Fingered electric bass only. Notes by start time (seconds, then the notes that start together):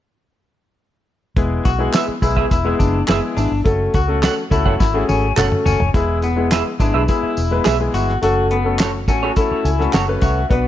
1.36 E1
1.65 B1
2.08 muted fingered electric bass stroke
2.22 B1
2.51 E1
2.80 F#1
3.08 F#1
3.37 G#1
3.51 G1
3.65 F#1
3.94 C#2
4.51 C#2
4.66 F#1
4.81 G#1
5.09 G#1
5.37 F#1
5.66 F#1
5.80 F1
5.94 E1
6.80 G#1
6.95 B1
7.23 muted fingered electric bass stroke
7.37 E1
7.66 B1
7.94 G1
8.22 F#1
9.08 A1
9.51 muted fingered electric bass stroke
9.65 C#2
9.93 F#1
10.22 C2
10.51 B1